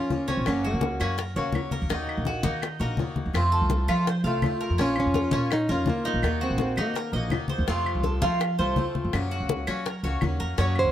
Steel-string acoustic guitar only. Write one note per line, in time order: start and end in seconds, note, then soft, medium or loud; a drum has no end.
0.00 0.11 A#3 medium
0.00 0.11 C#4 soft
0.00 0.11 F4 medium
0.11 0.46 F3 soft
0.11 0.46 A#3 soft
0.11 0.47 C#4 soft
0.11 0.47 F4 medium
0.46 1.00 C#3 medium
0.46 1.01 F#3 medium
0.46 1.00 A#3 medium
0.46 0.99 C#4 medium
0.46 0.99 F#4 medium
1.00 1.16 F#3 soft
1.00 1.17 A#3 medium
1.00 1.17 C#4 medium
1.00 1.17 F#4 medium
1.18 muted steel-string acoustic guitar stroke medium
1.36 1.52 F#3 soft
1.36 1.53 A#3 medium
1.36 1.53 C#4 soft
1.36 1.54 F#4 medium
1.53 1.89 F#3 soft
1.53 1.89 A#3 soft
1.53 1.90 C#4 soft
1.53 1.90 F#4 medium
1.89 2.43 D#3 medium
1.89 2.43 A#3 medium
1.89 2.43 D#4 medium
1.89 2.42 F#4 medium
2.43 2.62 A#3 medium
2.43 2.62 D#4 medium
2.43 2.61 F#4 medium
2.63 muted steel-string acoustic guitar stroke medium
2.80 2.98 A#3 soft
2.80 2.98 D#4 medium
2.80 2.97 F#4 medium
2.99 3.34 D#3 soft
2.99 3.34 A#3 soft
2.99 3.35 D#4 soft
2.99 3.35 F#4 medium
3.34 3.88 C3 medium
3.34 3.90 F3 medium
3.34 3.88 A3 medium
3.34 3.88 C4 medium
3.34 3.89 F4 medium
3.89 4.07 F3 soft
3.89 4.07 A3 medium
3.89 4.07 C4 soft
3.89 4.06 F4 medium
4.08 muted steel-string acoustic guitar stroke medium
4.25 4.43 F3 soft
4.25 4.43 A3 soft
4.25 4.43 C4 medium
4.25 4.42 F4 medium
4.44 4.78 F3 soft
4.44 4.79 A3 soft
4.44 4.80 C4 soft
4.44 4.80 F4 soft
4.79 5.33 F3 medium
4.79 5.35 A#3 medium
4.79 5.33 C#4 medium
4.79 5.33 F4 medium
5.34 5.51 A#3 soft
5.34 5.51 C#4 medium
5.34 5.51 F4 medium
5.52 muted steel-string acoustic guitar stroke medium
5.70 5.87 A#3 soft
5.70 5.88 C#4 medium
5.70 5.87 F4 medium
5.88 6.23 F3 soft
5.88 6.23 A#3 soft
5.88 6.23 C#4 soft
5.88 6.24 F4 medium
6.23 6.77 D#3 medium
6.23 6.77 A#3 medium
6.23 6.77 D#4 medium
6.23 6.77 F#4 medium
6.78 6.95 A#3 soft
6.78 6.96 D#4 medium
6.78 6.95 F#4 medium
6.97 muted steel-string acoustic guitar stroke medium
7.15 7.31 A#3 soft
7.15 7.32 D#4 medium
7.15 7.32 F#4 medium
7.32 7.67 D#3 soft
7.32 7.68 A#3 soft
7.32 7.68 D#4 soft
7.32 7.68 F#4 soft
7.68 8.22 C3 medium
7.68 8.22 F3 medium
7.68 8.22 A3 medium
7.68 8.22 C4 medium
7.68 8.22 F4 medium
8.23 8.39 F3 soft
8.23 8.40 A3 medium
8.23 8.40 C4 medium
8.23 8.40 F4 medium
8.40 muted steel-string acoustic guitar stroke medium
8.60 8.76 F3 medium
8.60 8.77 A3 soft
8.60 8.76 C4 medium
8.60 8.76 F4 medium
8.77 9.12 F3 soft
8.77 9.13 A3 soft
8.77 9.13 C4 soft
8.77 9.13 F4 medium
9.14 9.67 C#3 medium
9.14 9.67 F#3 medium
9.14 9.67 A#3 medium
9.14 9.67 C#4 medium
9.14 9.67 F#4 medium
9.68 9.85 F#3 soft
9.68 9.85 A#3 soft
9.68 9.85 C#4 medium
9.68 9.85 F#4 medium
9.86 muted steel-string acoustic guitar stroke medium
10.04 10.21 F#3 soft
10.04 10.22 A#3 soft
10.04 10.21 C#4 medium
10.04 10.21 F#4 medium
10.22 10.57 F#3 soft
10.22 10.57 A#3 soft
10.22 10.58 C#4 soft
10.22 10.58 F#4 soft
10.58 10.92 C#3 medium
10.58 10.92 F#3 medium
10.58 10.92 A#3 medium
10.58 10.92 C#4 medium
10.58 10.92 F#4 medium